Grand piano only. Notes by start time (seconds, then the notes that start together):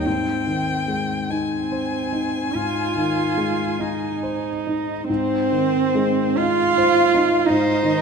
0.06 G#2
0.47 D#3
0.88 G#3
1.30 D#4
1.72 C5
2.13 D#4
2.55 G#2
2.96 D#3
3.37 G#3
3.79 D#4
4.23 C5
4.67 D#4
5.09 G#2
5.52 D#3
5.95 G#3
6.38 D#4
6.77 C5
7.15 D#4
7.50 G#2
7.83 D#3